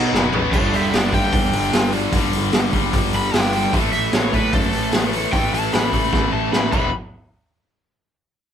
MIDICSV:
0, 0, Header, 1, 7, 480
1, 0, Start_track
1, 0, Tempo, 399734
1, 636, Time_signature, 4, 2, 24, 8
1, 10254, End_track
2, 0, Start_track
2, 0, Title_t, "Overdriven electric guitar"
2, 0, Program_c, 0, 29
2, 0, Note_on_c, 0, 63, 79
2, 0, Note_on_c, 0, 75, 110
2, 346, Note_off_c, 0, 75, 0
2, 350, Note_off_c, 0, 63, 0
2, 621, Note_on_c, 0, 69, 77
2, 634, Note_on_c, 0, 73, 91
2, 868, Note_off_c, 0, 69, 0
2, 892, Note_on_c, 0, 67, 63
2, 897, Note_off_c, 0, 73, 0
2, 897, Note_on_c, 0, 76, 73
2, 1124, Note_off_c, 0, 67, 0
2, 1130, Note_off_c, 0, 76, 0
2, 1130, Note_on_c, 0, 74, 73
2, 1138, Note_on_c, 0, 78, 87
2, 1360, Note_off_c, 0, 78, 0
2, 1363, Note_off_c, 0, 74, 0
2, 1370, Note_on_c, 0, 79, 99
2, 2294, Note_off_c, 0, 79, 0
2, 3792, Note_on_c, 0, 83, 97
2, 4028, Note_off_c, 0, 83, 0
2, 4028, Note_on_c, 0, 79, 93
2, 4479, Note_off_c, 0, 79, 0
2, 4719, Note_on_c, 0, 76, 86
2, 4963, Note_off_c, 0, 76, 0
2, 4963, Note_on_c, 0, 73, 89
2, 5219, Note_off_c, 0, 73, 0
2, 5219, Note_on_c, 0, 71, 97
2, 5442, Note_off_c, 0, 71, 0
2, 5451, Note_on_c, 0, 69, 100
2, 5911, Note_off_c, 0, 69, 0
2, 6394, Note_on_c, 0, 79, 102
2, 6629, Note_off_c, 0, 79, 0
2, 6660, Note_on_c, 0, 81, 91
2, 6883, Note_off_c, 0, 81, 0
2, 6891, Note_on_c, 0, 83, 93
2, 7584, Note_off_c, 0, 83, 0
2, 7603, Note_on_c, 0, 81, 86
2, 7833, Note_off_c, 0, 81, 0
2, 7838, Note_on_c, 0, 83, 92
2, 8060, Note_off_c, 0, 83, 0
2, 8075, Note_on_c, 0, 83, 107
2, 8310, Note_off_c, 0, 83, 0
2, 10254, End_track
3, 0, Start_track
3, 0, Title_t, "Distorted electric guitar"
3, 0, Program_c, 1, 30
3, 0, Note_on_c, 1, 47, 73
3, 0, Note_on_c, 1, 54, 85
3, 0, Note_on_c, 1, 59, 90
3, 125, Note_off_c, 1, 47, 0
3, 134, Note_off_c, 1, 59, 0
3, 139, Note_on_c, 1, 47, 87
3, 149, Note_off_c, 1, 54, 0
3, 166, Note_on_c, 1, 54, 94
3, 185, Note_on_c, 1, 59, 99
3, 613, Note_off_c, 1, 47, 0
3, 621, Note_on_c, 1, 43, 75
3, 626, Note_off_c, 1, 54, 0
3, 636, Note_off_c, 1, 59, 0
3, 647, Note_on_c, 1, 50, 87
3, 661, Note_on_c, 1, 55, 91
3, 1339, Note_off_c, 1, 55, 0
3, 1343, Note_on_c, 1, 55, 80
3, 1346, Note_off_c, 1, 50, 0
3, 1367, Note_on_c, 1, 50, 70
3, 1384, Note_off_c, 1, 43, 0
3, 1389, Note_on_c, 1, 43, 71
3, 2535, Note_off_c, 1, 55, 0
3, 2542, Note_off_c, 1, 43, 0
3, 2547, Note_off_c, 1, 50, 0
3, 2556, Note_on_c, 1, 43, 85
3, 2581, Note_on_c, 1, 50, 90
3, 2597, Note_on_c, 1, 55, 96
3, 3262, Note_off_c, 1, 43, 0
3, 3264, Note_off_c, 1, 55, 0
3, 3274, Note_off_c, 1, 50, 0
3, 3278, Note_on_c, 1, 55, 87
3, 3300, Note_on_c, 1, 50, 72
3, 3319, Note_on_c, 1, 43, 61
3, 4464, Note_off_c, 1, 55, 0
3, 4473, Note_off_c, 1, 50, 0
3, 4478, Note_on_c, 1, 45, 89
3, 4484, Note_off_c, 1, 43, 0
3, 4496, Note_on_c, 1, 52, 92
3, 4518, Note_on_c, 1, 57, 95
3, 5187, Note_off_c, 1, 57, 0
3, 5192, Note_on_c, 1, 57, 76
3, 5211, Note_off_c, 1, 52, 0
3, 5216, Note_on_c, 1, 52, 79
3, 5229, Note_off_c, 1, 45, 0
3, 5234, Note_on_c, 1, 45, 67
3, 6381, Note_off_c, 1, 57, 0
3, 6387, Note_off_c, 1, 45, 0
3, 6401, Note_on_c, 1, 45, 91
3, 6422, Note_off_c, 1, 52, 0
3, 6427, Note_on_c, 1, 52, 83
3, 6446, Note_on_c, 1, 57, 89
3, 7106, Note_off_c, 1, 45, 0
3, 7113, Note_off_c, 1, 57, 0
3, 7119, Note_off_c, 1, 52, 0
3, 7128, Note_on_c, 1, 57, 85
3, 7149, Note_on_c, 1, 52, 73
3, 7167, Note_on_c, 1, 45, 66
3, 8073, Note_off_c, 1, 52, 0
3, 8078, Note_on_c, 1, 40, 87
3, 8082, Note_off_c, 1, 45, 0
3, 8084, Note_off_c, 1, 57, 0
3, 8087, Note_on_c, 1, 47, 88
3, 8088, Note_on_c, 1, 52, 85
3, 8271, Note_off_c, 1, 40, 0
3, 8275, Note_off_c, 1, 47, 0
3, 8276, Note_off_c, 1, 52, 0
3, 10254, End_track
4, 0, Start_track
4, 0, Title_t, "Distorted electric guitar"
4, 0, Program_c, 2, 30
4, 0, Note_on_c, 2, 47, 89
4, 0, Note_on_c, 2, 54, 108
4, 0, Note_on_c, 2, 59, 112
4, 372, Note_off_c, 2, 47, 0
4, 374, Note_off_c, 2, 59, 0
4, 387, Note_off_c, 2, 54, 0
4, 388, Note_on_c, 2, 59, 85
4, 417, Note_on_c, 2, 54, 82
4, 436, Note_on_c, 2, 47, 70
4, 618, Note_off_c, 2, 59, 0
4, 632, Note_off_c, 2, 54, 0
4, 642, Note_off_c, 2, 47, 0
4, 2306, Note_on_c, 2, 55, 79
4, 2341, Note_on_c, 2, 50, 79
4, 2354, Note_on_c, 2, 43, 73
4, 2527, Note_off_c, 2, 43, 0
4, 2536, Note_off_c, 2, 55, 0
4, 2554, Note_off_c, 2, 50, 0
4, 4238, Note_on_c, 2, 55, 83
4, 4263, Note_on_c, 2, 50, 79
4, 4286, Note_on_c, 2, 43, 69
4, 4463, Note_off_c, 2, 55, 0
4, 4467, Note_off_c, 2, 50, 0
4, 4487, Note_off_c, 2, 43, 0
4, 6153, Note_on_c, 2, 57, 85
4, 6182, Note_on_c, 2, 52, 77
4, 6203, Note_on_c, 2, 45, 70
4, 6382, Note_off_c, 2, 57, 0
4, 6387, Note_off_c, 2, 45, 0
4, 6421, Note_off_c, 2, 52, 0
4, 10254, End_track
5, 0, Start_track
5, 0, Title_t, "Distorted electric guitar"
5, 0, Program_c, 3, 30
5, 0, Note_on_c, 3, 47, 89
5, 0, Note_on_c, 3, 54, 105
5, 0, Note_on_c, 3, 59, 104
5, 369, Note_off_c, 3, 47, 0
5, 373, Note_off_c, 3, 54, 0
5, 381, Note_off_c, 3, 59, 0
5, 399, Note_on_c, 3, 59, 92
5, 414, Note_on_c, 3, 54, 81
5, 426, Note_on_c, 3, 47, 72
5, 623, Note_off_c, 3, 59, 0
5, 626, Note_on_c, 3, 43, 88
5, 630, Note_off_c, 3, 54, 0
5, 637, Note_off_c, 3, 47, 0
5, 648, Note_on_c, 3, 50, 85
5, 651, Note_on_c, 3, 55, 96
5, 1816, Note_off_c, 3, 43, 0
5, 1821, Note_off_c, 3, 55, 0
5, 1827, Note_off_c, 3, 50, 0
5, 1836, Note_on_c, 3, 55, 83
5, 1855, Note_on_c, 3, 50, 80
5, 1869, Note_on_c, 3, 43, 76
5, 2061, Note_off_c, 3, 55, 0
5, 2062, Note_off_c, 3, 43, 0
5, 2070, Note_off_c, 3, 50, 0
5, 2077, Note_on_c, 3, 43, 73
5, 2085, Note_on_c, 3, 50, 74
5, 2096, Note_on_c, 3, 55, 81
5, 2537, Note_off_c, 3, 43, 0
5, 2546, Note_off_c, 3, 50, 0
5, 2551, Note_off_c, 3, 55, 0
5, 2552, Note_on_c, 3, 43, 83
5, 2561, Note_on_c, 3, 50, 88
5, 2578, Note_on_c, 3, 55, 102
5, 3740, Note_off_c, 3, 43, 0
5, 3743, Note_off_c, 3, 55, 0
5, 3745, Note_off_c, 3, 50, 0
5, 3757, Note_on_c, 3, 55, 83
5, 3786, Note_on_c, 3, 50, 77
5, 3793, Note_on_c, 3, 43, 69
5, 3970, Note_off_c, 3, 43, 0
5, 3982, Note_off_c, 3, 55, 0
5, 3984, Note_on_c, 3, 43, 81
5, 3987, Note_off_c, 3, 50, 0
5, 4001, Note_on_c, 3, 50, 83
5, 4011, Note_on_c, 3, 55, 85
5, 4457, Note_off_c, 3, 43, 0
5, 4465, Note_off_c, 3, 50, 0
5, 4470, Note_off_c, 3, 55, 0
5, 10254, End_track
6, 0, Start_track
6, 0, Title_t, "Picked electric bass"
6, 0, Program_c, 4, 34
6, 152, Note_on_c, 4, 30, 100
6, 342, Note_off_c, 4, 30, 0
6, 407, Note_on_c, 4, 33, 92
6, 639, Note_on_c, 4, 31, 89
6, 657, Note_off_c, 4, 33, 0
6, 834, Note_off_c, 4, 31, 0
6, 876, Note_on_c, 4, 31, 84
6, 1072, Note_off_c, 4, 31, 0
6, 1119, Note_on_c, 4, 31, 90
6, 1313, Note_off_c, 4, 31, 0
6, 1352, Note_on_c, 4, 43, 86
6, 1549, Note_off_c, 4, 43, 0
6, 1595, Note_on_c, 4, 40, 89
6, 1791, Note_off_c, 4, 40, 0
6, 1846, Note_on_c, 4, 31, 87
6, 2038, Note_off_c, 4, 31, 0
6, 2081, Note_on_c, 4, 31, 93
6, 2471, Note_off_c, 4, 31, 0
6, 2549, Note_on_c, 4, 31, 91
6, 2748, Note_off_c, 4, 31, 0
6, 2798, Note_on_c, 4, 31, 87
6, 2993, Note_off_c, 4, 31, 0
6, 3033, Note_on_c, 4, 31, 86
6, 3230, Note_off_c, 4, 31, 0
6, 3281, Note_on_c, 4, 31, 86
6, 3475, Note_off_c, 4, 31, 0
6, 3516, Note_on_c, 4, 31, 92
6, 3712, Note_off_c, 4, 31, 0
6, 3760, Note_on_c, 4, 31, 89
6, 3954, Note_off_c, 4, 31, 0
6, 3996, Note_on_c, 4, 31, 90
6, 4389, Note_off_c, 4, 31, 0
6, 4480, Note_on_c, 4, 33, 89
6, 4675, Note_off_c, 4, 33, 0
6, 4708, Note_on_c, 4, 33, 86
6, 4908, Note_off_c, 4, 33, 0
6, 4959, Note_on_c, 4, 33, 87
6, 5154, Note_off_c, 4, 33, 0
6, 5195, Note_on_c, 4, 45, 85
6, 5392, Note_off_c, 4, 45, 0
6, 5443, Note_on_c, 4, 42, 90
6, 5637, Note_off_c, 4, 42, 0
6, 5690, Note_on_c, 4, 33, 86
6, 5881, Note_off_c, 4, 33, 0
6, 5922, Note_on_c, 4, 33, 87
6, 6313, Note_off_c, 4, 33, 0
6, 6396, Note_on_c, 4, 33, 88
6, 6593, Note_off_c, 4, 33, 0
6, 6638, Note_on_c, 4, 33, 89
6, 6835, Note_off_c, 4, 33, 0
6, 6887, Note_on_c, 4, 33, 83
6, 7080, Note_off_c, 4, 33, 0
6, 7118, Note_on_c, 4, 33, 84
6, 7314, Note_off_c, 4, 33, 0
6, 7354, Note_on_c, 4, 33, 87
6, 7552, Note_off_c, 4, 33, 0
6, 7603, Note_on_c, 4, 33, 84
6, 7798, Note_off_c, 4, 33, 0
6, 7830, Note_on_c, 4, 33, 83
6, 8030, Note_off_c, 4, 33, 0
6, 8077, Note_on_c, 4, 28, 88
6, 8301, Note_off_c, 4, 28, 0
6, 10254, End_track
7, 0, Start_track
7, 0, Title_t, "Drums"
7, 170, Note_on_c, 9, 38, 75
7, 290, Note_off_c, 9, 38, 0
7, 396, Note_on_c, 9, 43, 97
7, 516, Note_off_c, 9, 43, 0
7, 635, Note_on_c, 9, 36, 111
7, 641, Note_on_c, 9, 49, 110
7, 755, Note_off_c, 9, 36, 0
7, 761, Note_off_c, 9, 49, 0
7, 881, Note_on_c, 9, 46, 55
7, 1001, Note_off_c, 9, 46, 0
7, 1121, Note_on_c, 9, 46, 70
7, 1124, Note_on_c, 9, 38, 103
7, 1241, Note_off_c, 9, 46, 0
7, 1244, Note_off_c, 9, 38, 0
7, 1354, Note_on_c, 9, 36, 86
7, 1363, Note_on_c, 9, 46, 54
7, 1474, Note_off_c, 9, 36, 0
7, 1483, Note_off_c, 9, 46, 0
7, 1594, Note_on_c, 9, 36, 112
7, 1595, Note_on_c, 9, 46, 72
7, 1714, Note_off_c, 9, 36, 0
7, 1715, Note_off_c, 9, 46, 0
7, 1836, Note_on_c, 9, 46, 55
7, 1956, Note_off_c, 9, 46, 0
7, 2079, Note_on_c, 9, 46, 78
7, 2083, Note_on_c, 9, 38, 113
7, 2199, Note_off_c, 9, 46, 0
7, 2203, Note_off_c, 9, 38, 0
7, 2310, Note_on_c, 9, 46, 56
7, 2430, Note_off_c, 9, 46, 0
7, 2550, Note_on_c, 9, 46, 76
7, 2553, Note_on_c, 9, 36, 104
7, 2670, Note_off_c, 9, 46, 0
7, 2673, Note_off_c, 9, 36, 0
7, 2795, Note_on_c, 9, 46, 58
7, 2915, Note_off_c, 9, 46, 0
7, 3032, Note_on_c, 9, 46, 73
7, 3035, Note_on_c, 9, 38, 105
7, 3152, Note_off_c, 9, 46, 0
7, 3156, Note_off_c, 9, 38, 0
7, 3275, Note_on_c, 9, 46, 55
7, 3278, Note_on_c, 9, 36, 82
7, 3395, Note_off_c, 9, 46, 0
7, 3398, Note_off_c, 9, 36, 0
7, 3520, Note_on_c, 9, 46, 78
7, 3521, Note_on_c, 9, 36, 108
7, 3640, Note_off_c, 9, 46, 0
7, 3641, Note_off_c, 9, 36, 0
7, 3755, Note_on_c, 9, 46, 55
7, 3875, Note_off_c, 9, 46, 0
7, 4003, Note_on_c, 9, 46, 82
7, 4006, Note_on_c, 9, 38, 119
7, 4123, Note_off_c, 9, 46, 0
7, 4127, Note_off_c, 9, 38, 0
7, 4236, Note_on_c, 9, 46, 57
7, 4356, Note_off_c, 9, 46, 0
7, 4482, Note_on_c, 9, 36, 108
7, 4485, Note_on_c, 9, 46, 73
7, 4602, Note_off_c, 9, 36, 0
7, 4605, Note_off_c, 9, 46, 0
7, 4714, Note_on_c, 9, 46, 54
7, 4834, Note_off_c, 9, 46, 0
7, 4956, Note_on_c, 9, 46, 71
7, 4959, Note_on_c, 9, 38, 109
7, 5076, Note_off_c, 9, 46, 0
7, 5079, Note_off_c, 9, 38, 0
7, 5202, Note_on_c, 9, 36, 79
7, 5206, Note_on_c, 9, 46, 52
7, 5322, Note_off_c, 9, 36, 0
7, 5326, Note_off_c, 9, 46, 0
7, 5441, Note_on_c, 9, 36, 110
7, 5442, Note_on_c, 9, 46, 71
7, 5561, Note_off_c, 9, 36, 0
7, 5562, Note_off_c, 9, 46, 0
7, 5676, Note_on_c, 9, 46, 55
7, 5796, Note_off_c, 9, 46, 0
7, 5911, Note_on_c, 9, 46, 76
7, 5915, Note_on_c, 9, 38, 110
7, 6031, Note_off_c, 9, 46, 0
7, 6035, Note_off_c, 9, 38, 0
7, 6160, Note_on_c, 9, 46, 53
7, 6280, Note_off_c, 9, 46, 0
7, 6399, Note_on_c, 9, 36, 102
7, 6400, Note_on_c, 9, 46, 70
7, 6519, Note_off_c, 9, 36, 0
7, 6520, Note_off_c, 9, 46, 0
7, 6651, Note_on_c, 9, 46, 55
7, 6771, Note_off_c, 9, 46, 0
7, 6881, Note_on_c, 9, 46, 74
7, 6885, Note_on_c, 9, 38, 101
7, 7001, Note_off_c, 9, 46, 0
7, 7005, Note_off_c, 9, 38, 0
7, 7116, Note_on_c, 9, 36, 77
7, 7118, Note_on_c, 9, 46, 57
7, 7236, Note_off_c, 9, 36, 0
7, 7238, Note_off_c, 9, 46, 0
7, 7358, Note_on_c, 9, 36, 107
7, 7365, Note_on_c, 9, 38, 56
7, 7479, Note_off_c, 9, 36, 0
7, 7486, Note_off_c, 9, 38, 0
7, 7838, Note_on_c, 9, 38, 91
7, 7958, Note_off_c, 9, 38, 0
7, 8075, Note_on_c, 9, 36, 97
7, 8078, Note_on_c, 9, 49, 82
7, 8195, Note_off_c, 9, 36, 0
7, 8198, Note_off_c, 9, 49, 0
7, 10254, End_track
0, 0, End_of_file